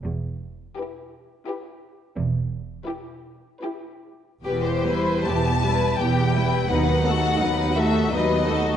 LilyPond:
<<
  \new Staff \with { instrumentName = "Violin section" } { \time 3/4 \key e \minor \tempo 4 = 85 r4 b'4 b'4 | r4 b'4 b'4 | b'16 c''8. a''4 g''4 | fis''4. e''8 dis''4 | }
  \new Staff \with { instrumentName = "Violin section" } { \time 3/4 \key e \minor r4 g'4 g'4 | r4 g'4 g'4 | g'8 <e' b'>8 g'8 <e' b'>8 g'8 <e' b'>8 | <dis' b'>8 <fis' a'>8 <dis' b'>8 <fis' a'>8 <dis' b'>8 <fis' a'>8 | }
  \new Staff \with { instrumentName = "Viola section" } { \time 3/4 \key e \minor r4 e'4 e'4 | r4 e'4 e'4 | <e b>8 g8 <e b>8 g8 <e b>8 g8 | <fis b>8 <a dis'>8 <fis b>8 <a dis'>8 <fis b>8 <a dis'>8 | }
  \new Staff \with { instrumentName = "Cello section" } { \clef bass \time 3/4 \key e \minor e,4 r2 | e,4 r2 | e,4 e,4 e,4 | dis,4 dis,4 dis,4 | }
  \new Staff \with { instrumentName = "Double bass section" } { \clef bass \time 3/4 \key e \minor e,,4 r2 | e,,4 r2 | e,,4 e,,4 e,,4 | dis,4 dis,4 dis,4 | }
>>